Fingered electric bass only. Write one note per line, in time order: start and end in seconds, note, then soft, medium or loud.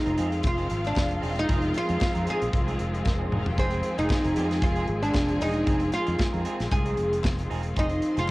0.07 0.17 F1 medium
0.19 0.41 F2 loud
0.44 0.67 F1 medium
0.71 0.93 G#1 loud
0.97 1.19 F1 medium
1.23 1.45 E1 medium
1.49 1.71 F1 loud
1.90 2.00 F2 loud
2.16 2.26 F2 medium
2.42 2.52 A#1 medium
2.54 2.76 C2 medium
2.80 3.02 F1 medium
3.06 3.28 F1 medium
3.33 3.55 E1 medium
3.59 3.81 F1 medium
3.98 4.09 F1 loud
4.25 4.35 F1 medium
4.37 4.59 F2 loud
4.62 4.85 F1 medium
4.89 5.11 G#1 loud
5.15 5.37 F1 medium
5.42 5.64 E1 medium
5.67 5.89 F1 medium
6.08 6.18 F2 loud
6.34 6.44 F2 loud
6.60 6.70 A#1 medium
6.72 6.94 C2 loud
6.98 7.21 F1 medium
7.25 7.47 F1 medium
7.51 7.73 E1 medium
7.77 7.99 F1 medium
8.17 8.28 F1 loud